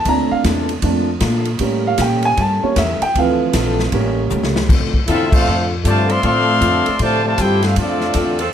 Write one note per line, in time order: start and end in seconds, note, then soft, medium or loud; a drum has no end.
0.05 0.29 D2 loud
0.05 0.67 A3 medium
0.05 0.33 A#3 soft
0.05 0.67 C4 soft
0.05 0.33 D4 medium
0.05 0.67 D4 medium
0.05 0.33 F4 medium
0.05 0.33 A4 medium
0.05 0.31 A#5 medium
0.05 kick soft
0.05 ride medium
0.31 0.40 F5 medium
0.31 muted upright bass stroke soft
0.44 0.82 E2 loud
0.44 0.71 A#3 medium
0.44 0.71 D4 medium
0.44 0.71 F4 medium
0.44 0.71 A4 medium
0.44 kick soft
0.44 snare medium
0.44 hi-hat pedal medium
0.44 ride medium
0.69 ride medium
0.82 1.20 F2 loud
0.82 1.05 A3 soft
0.82 1.09 A#3 medium
0.82 1.06 C4 soft
0.82 1.10 D4 medium
0.82 1.06 D4 soft
0.82 1.10 F4 medium
0.82 1.10 A4 medium
0.82 kick soft
0.82 ride medium
1.20 1.59 A#2 loud
1.20 1.48 A#3 medium
1.20 1.48 D4 medium
1.20 1.48 F4 medium
1.20 1.49 A4 medium
1.20 kick soft
1.20 snare medium
1.20 hi-hat pedal medium
1.20 ride medium
1.45 ride medium
1.59 1.98 A2 medium
1.59 2.61 G3 medium
1.59 1.87 A3 soft
1.59 2.62 A#3 soft
1.59 2.62 C#4 medium
1.59 1.87 C#4 medium
1.59 1.87 G4 medium
1.59 1.88 A#4 medium
1.59 kick soft
1.59 ride medium
1.87 2.00 F5 medium
1.98 2.36 A#2 loud
1.98 2.26 A3 medium
1.98 2.26 C#4 medium
1.98 2.26 G4 medium
1.98 2.24 G5 medium
1.98 kick soft
1.98 snare medium
1.98 hi-hat pedal medium
1.98 ride medium
2.02 2.27 A#4 medium
2.23 2.38 G#5 loud
2.23 ride medium
2.37 2.60 G2 loud
2.37 2.64 A3 soft
2.37 2.65 C#4 medium
2.37 2.65 G4 medium
2.37 2.65 A#4 medium
2.37 2.63 A5 medium
2.37 kick soft
2.37 ride medium
2.63 2.75 G3 medium
2.63 2.75 A#3 soft
2.63 2.76 C#4 medium
2.63 2.77 C#5 medium
2.63 muted upright bass stroke soft
2.76 2.99 E2 loud
2.76 3.02 A3 medium
2.76 3.03 C#4 medium
2.76 3.03 G4 medium
2.76 3.03 A#4 medium
2.76 3.01 E5 medium
2.76 kick soft
2.76 snare medium
2.76 hi-hat pedal medium
2.76 ride medium
3.01 3.15 G5 medium
3.01 muted upright bass stroke soft
3.01 ride medium
3.15 3.52 D2 loud
3.15 3.41 D3 soft
3.15 3.90 E3 medium
3.15 3.89 F3 medium
3.15 3.42 C4 medium
3.15 3.89 C4 medium
3.15 3.42 F4 soft
3.15 3.42 A4 medium
3.15 3.90 F5 medium
3.15 kick soft
3.15 ride medium
3.53 3.91 A#1 loud
3.53 3.80 D3 medium
3.53 3.80 C4 medium
3.53 3.81 F4 medium
3.53 3.81 A4 medium
3.53 kick soft
3.53 snare medium
3.53 hi-hat pedal medium
3.53 ride medium
3.79 snare medium
3.92 4.30 A1 loud
3.92 4.66 G3 medium
3.92 4.18 A3 medium
3.92 4.66 A#3 medium
3.92 4.19 C#4 medium
3.92 4.67 C#4 medium
3.92 4.19 G4 medium
3.92 4.19 A#4 medium
3.92 kick soft
3.92 ride medium
4.30 4.69 C#2 loud
4.30 4.57 A3 medium
4.30 4.57 C#4 medium
4.30 4.57 G4 medium
4.30 4.57 A#4 medium
4.30 hi-hat pedal medium
4.30 mid tom medium
4.43 snare medium
4.56 snare loud
4.69 5.07 D2 medium
4.69 4.95 D3 medium
4.69 4.96 A3 medium
4.69 4.96 C4 medium
4.69 4.96 F4 medium
4.69 kick medium
4.69 crash medium
4.94 kick medium
5.07 5.45 E2 loud
5.07 5.34 D3 medium
5.07 5.34 A3 medium
5.07 5.66 C4 loud
5.07 5.34 C4 medium
5.07 5.66 D4 loud
5.07 5.30 E4 medium
5.07 5.66 F4 loud
5.07 5.34 F4 medium
5.07 5.32 F4 medium
5.07 5.66 A4 loud
5.07 5.31 A4 medium
5.07 5.32 E5 loud
5.07 kick soft
5.07 hi-hat pedal medium
5.07 ride medium
5.12 5.33 C4 medium
5.31 5.67 A3 loud
5.31 5.67 C4 medium
5.31 5.68 D4 medium
5.31 5.67 F4 medium
5.31 5.68 A4 medium
5.31 5.68 C5 medium
5.31 5.69 F5 loud
5.31 kick loud
5.31 crash loud
5.47 5.84 F2 loud
5.47 5.72 D3 soft
5.47 5.73 A3 medium
5.47 5.73 C4 medium
5.47 5.73 F4 medium
5.84 6.22 G2 loud
5.84 6.08 C3 medium
5.84 6.11 D3 medium
5.84 6.08 F3 medium
5.84 6.07 A3 loud
5.84 6.11 A3 medium
5.84 6.11 C4 medium
5.84 6.11 F4 medium
5.84 6.09 F4 medium
5.84 6.08 C5 medium
5.84 6.09 D5 medium
5.84 6.09 A5 loud
5.84 kick soft
5.84 hi-hat pedal medium
5.84 ride medium
6.06 6.58 F3 loud
6.06 6.22 F3 loud
6.06 6.22 A3 medium
6.06 6.57 C4 medium
6.06 6.22 C4 medium
6.06 6.57 D4 loud
6.06 6.58 A4 loud
6.06 6.23 A4 medium
6.06 6.24 D5 loud
6.06 ride medium
6.10 6.23 F5 medium
6.10 6.24 C6 loud
6.23 6.61 A2 loud
6.23 6.49 D3 medium
6.23 6.96 F3 loud
6.23 6.96 A3 loud
6.23 6.50 A3 medium
6.23 6.96 C4 loud
6.23 6.50 C4 soft
6.23 6.51 F4 medium
6.23 6.96 A4 loud
6.23 6.97 D5 loud
6.23 6.96 F5 loud
6.23 6.97 C6 loud
6.23 kick soft
6.23 ride medium
6.61 6.84 F2 loud
6.61 6.87 D3 medium
6.61 6.88 A3 medium
6.61 6.88 C4 medium
6.61 6.88 F4 medium
6.61 kick soft
6.61 hi-hat pedal medium
6.61 ride medium
6.85 6.95 F3 medium
6.85 6.95 C4 medium
6.85 6.95 D4 medium
6.85 6.95 A4 loud
6.85 muted upright bass stroke soft
6.85 ride medium
6.99 7.37 A2 loud
6.99 7.24 C3 medium
6.99 7.26 D3 medium
6.99 7.23 F3 medium
6.99 7.26 A3 medium
6.99 7.24 A3 loud
6.99 7.27 C4 medium
6.99 7.27 F4 medium
6.99 7.25 F4 medium
6.99 7.24 C5 medium
6.99 7.24 D5 medium
6.99 7.25 A5 loud
6.99 kick soft
6.99 ride medium
7.24 7.38 C3 medium
7.24 7.37 F3 medium
7.24 7.38 A3 medium
7.24 7.38 F4 medium
7.24 7.38 C5 medium
7.24 7.38 D5 medium
7.24 7.39 A5 loud
7.38 7.76 G2 loud
7.38 7.65 D3 medium
7.38 7.65 A3 medium
7.38 7.65 C4 medium
7.38 7.64 E4 medium
7.38 7.66 F4 medium
7.38 7.64 G4 medium
7.38 7.64 A4 medium
7.38 7.64 C5 medium
7.38 7.64 G5 loud
7.38 kick soft
7.38 hi-hat pedal medium
7.38 ride medium
7.62 7.78 A3 medium
7.62 7.78 C4 medium
7.62 7.78 D4 medium
7.62 7.77 F4 medium
7.62 7.78 A4 medium
7.62 7.78 C5 medium
7.62 7.78 F5 medium
7.62 snare medium
7.62 ride medium
7.76 8.14 F2 loud
7.76 8.03 D3 medium
7.76 8.03 A3 medium
7.76 8.51 A3 medium
7.76 8.04 C4 medium
7.76 8.51 C4 medium
7.76 8.51 D4 medium
7.76 8.51 F4 medium
7.76 8.04 F4 medium
7.76 8.51 F4 medium
7.76 8.51 A4 medium
7.76 8.51 D5 medium
7.76 kick soft
7.76 ride medium
8.01 snare soft
8.14 8.52 E2 loud
8.14 8.41 D3 medium
8.14 8.41 A3 medium
8.14 8.42 C4 medium
8.14 8.42 F4 medium
8.14 kick soft
8.14 hi-hat pedal medium
8.14 ride medium
8.38 8.48 F3 loud
8.38 8.49 C4 loud
8.38 8.49 D4 loud
8.38 8.49 A4 loud
8.38 ride medium